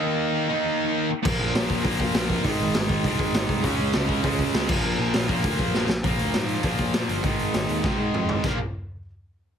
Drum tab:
CC |--------|x-------|--------|-------x|
HH |--------|--o-o-o-|o-o-o-o-|o-o-o-o-|
SD |--------|--o---o-|--o---o-|--o---o-|
T2 |--------|--------|--------|--------|
FT |--------|--------|--------|--------|
BD |--------|o--ooo-o|o--ooo-o|o--ooo-o|

CC |--------|--------|--------|x-------|
HH |--o-o---|oooooooo|oooo----|--------|
SD |--o---oo|--o---o-|--o-o---|--------|
T2 |--------|--------|------o-|--------|
FT |--------|--------|-------o|--------|
BD |---ooo--|o---oo--|o---o---|o-------|